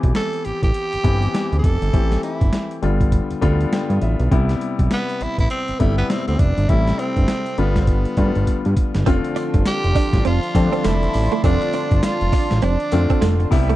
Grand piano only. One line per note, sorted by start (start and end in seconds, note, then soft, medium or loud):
0.00 0.45 E3 medium
0.00 0.46 B3 medium
0.00 0.46 C4 medium
0.00 0.49 G4 loud
1.04 1.73 E3 medium
1.04 1.73 B3 medium
1.04 1.74 C4 medium
1.04 1.74 G4 medium
1.93 2.82 E3 medium
1.93 2.82 A3 medium
1.93 2.83 C4 medium
1.93 2.83 G4 medium
2.82 3.32 D3 medium
2.82 3.32 G3 medium
2.82 3.33 B3 medium
2.82 3.33 F4 medium
3.41 4.11 D3 loud
3.41 4.11 G3 medium
3.41 4.11 B3 medium
3.41 4.11 F4 loud
3.73 4.00 G5 medium
4.02 4.30 E5 medium
4.31 5.21 C3 medium
4.31 5.21 G3 medium
4.31 5.22 B3 medium
4.31 5.22 E4 medium
5.80 6.49 C3 medium
5.80 6.49 G3 medium
5.80 6.49 B3 medium
5.80 6.49 E4 medium
6.69 7.58 C3 medium
6.69 7.56 G3 medium
6.69 7.58 A3 medium
6.69 7.59 E4 medium
7.58 8.08 D3 medium
7.58 8.08 G3 medium
7.58 8.08 B3 medium
7.58 8.08 F4 medium
8.17 8.86 D3 medium
8.17 8.86 G3 medium
8.17 8.25 A3 medium
8.17 8.87 F4 medium
8.24 8.90 B3 medium
9.06 9.96 D3 loud
9.06 9.97 A3 medium
9.06 9.97 C4 medium
9.06 9.97 F4 loud
10.55 11.24 D3 medium
10.55 10.63 G3 medium
10.55 11.24 C4 medium
10.55 11.24 D4 medium
10.62 11.27 A3 medium
11.44 12.34 D3 medium
11.44 12.34 A3 medium
11.44 12.34 C4 medium
11.44 12.35 F4 medium
12.92 13.52 D3 medium
12.92 13.52 A3 medium
12.92 13.52 C4 medium
12.92 13.52 F4 medium
13.51 13.76 C3 loud
13.51 13.76 G3 medium
13.51 13.76 B3 medium
13.51 13.76 E4 loud